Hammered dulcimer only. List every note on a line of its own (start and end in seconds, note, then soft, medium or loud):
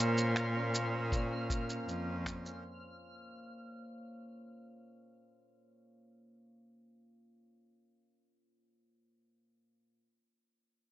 0.00 1.11 A#2 medium
0.00 2.80 C4 medium
0.00 0.17 C#4 medium
0.00 0.36 F4 medium
0.00 0.93 C5 medium
0.18 0.55 C#4 medium
0.56 1.31 C#4 medium
0.74 1.50 F4 medium
0.93 2.45 C5 medium
1.12 9.96 A#2 medium
1.31 1.69 C#4 soft
1.50 1.88 F4 medium
1.69 2.07 C#4 soft
1.88 2.26 F4 medium
2.07 8.64 C#4 medium
2.45 6.94 C5 medium